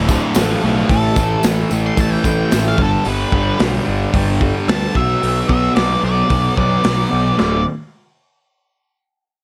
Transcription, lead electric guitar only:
0.11 A4 C5
0.38 C4 A4
0.65 C4 A4
0.90 A4
1.86 C6
2.00 A5
2.13 G5
2.68 F5
2.82 A4
3.09 B4
4.69 A5
4.96 E5
5.49 E5
5.75 D5
6.05 D5
6.58 D5
7.38 D5

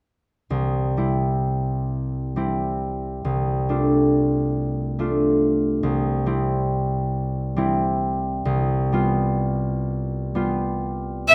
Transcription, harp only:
0.50 C2
0.97 G3 C4 E4
2.36 G3 C4 E4
3.25 C2
3.69 A3 D4 F4
4.99 A3 D4 F4
5.83 C2
6.26 G3 C4 E4
7.56 G3 C4 E4
8.45 C2
8.92 G3 B3 F4
10.35 G3 B3 F4

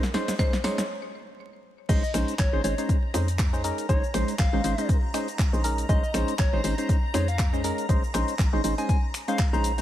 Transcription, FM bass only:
1.89 A#1
2.14 A#1
2.39 A#1
2.53 G#1
2.64 G#1
3.14 F2
3.89 A#1
4.14 A#1
4.39 A#1
4.53 G#1
4.64 G#1
5.53 A#1
5.89 A#1
6.14 A#1
6.39 A#1
6.53 G#1
6.64 G#1
7.14 F2
7.89 A#1
8.14 A#1
8.39 A#1
8.53 G#1
8.64 G#1
9.53 A#1

